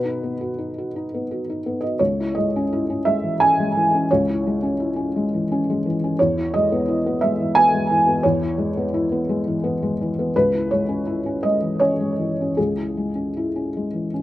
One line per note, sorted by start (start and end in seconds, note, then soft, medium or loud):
0.00 1.97 B2 medium
0.00 1.82 B4 medium
0.05 0.32 D#4 soft
0.23 0.51 B3 soft
0.41 0.68 F#4 soft
0.58 0.86 D#4 soft
0.78 1.05 F#4 soft
0.96 1.23 D#4 soft
1.14 1.41 B3 soft
1.31 1.58 F#4 soft
1.50 1.76 D#4 soft
1.66 1.94 B3 soft
1.81 2.00 F#4 soft
1.81 1.99 D#5 medium
1.99 4.05 C#2 soft
1.99 2.35 C#5 medium
2.20 2.47 E4 soft
2.35 2.64 G#3 soft
2.35 3.04 D#5 medium
2.56 2.82 C#4 soft
2.73 2.99 E4 medium
2.90 3.16 C#4 soft
3.05 3.33 G#3 soft
3.05 3.39 E5 medium
3.23 3.50 E3 soft
3.40 3.68 C#4 soft
3.40 4.09 G#5 medium
3.60 3.86 G#3 medium
3.77 4.03 E3 soft
3.94 4.21 C#4 soft
4.11 6.15 C#2 medium
4.11 5.84 C#5 medium
4.30 4.55 E4 soft
4.47 4.73 G#3 soft
4.63 4.89 C#4 soft
4.80 5.07 E4 soft
4.96 5.24 C#4 soft
5.16 5.43 G#3 soft
5.34 5.60 E3 soft
5.52 5.78 C#4 medium
5.70 5.95 G#3 medium
5.86 6.12 E3 soft
6.04 6.19 C#4 soft
6.19 8.21 E2 medium
6.19 6.53 C#5 medium
6.38 6.64 E4 soft
6.54 6.81 G#3 soft
6.54 7.21 D#5 medium
6.72 6.98 B3 medium
6.88 7.14 E4 medium
7.06 7.32 B3 medium
7.21 7.49 G#3 medium
7.21 7.55 E5 medium
7.40 7.66 E3 soft
7.55 7.83 B3 medium
7.55 8.23 G#5 loud
7.74 8.00 G#3 medium
7.91 8.17 E3 medium
8.07 8.34 B3 soft
8.23 10.31 E2 medium
8.23 9.98 C#5 medium
8.41 8.68 E4 soft
8.58 8.85 G#3 soft
8.77 9.03 B3 medium
8.94 9.20 E4 medium
9.12 9.38 B3 medium
9.29 9.56 G#3 medium
9.47 9.74 E3 soft
9.64 9.91 B3 medium
9.82 10.10 G#3 medium
10.01 10.28 E3 soft
10.19 10.35 B3 soft
10.36 12.55 C#2 medium
10.36 10.71 B4 medium
10.54 10.82 E4 soft
10.71 11.00 G#3 soft
10.71 11.43 C#5 medium
10.89 11.17 C#4 soft
11.06 11.36 E4 medium
11.26 11.55 C#4 soft
11.43 11.73 G#3 soft
11.43 11.80 D#5 medium
11.62 11.92 E3 soft
11.80 12.11 C#4 soft
11.80 12.57 C#5 medium
12.00 12.30 G#3 soft
12.19 12.49 E3 soft
12.41 12.70 C#4 soft
12.57 14.22 C#2 soft
12.57 14.12 G#4 medium
12.77 13.08 E4 soft
12.97 13.28 G#3 soft
13.15 13.46 C#4 soft
13.37 13.67 E4 soft
13.56 13.86 C#4 soft
13.77 14.06 G#3 soft
13.94 14.22 E3 soft
14.14 14.22 C#4 soft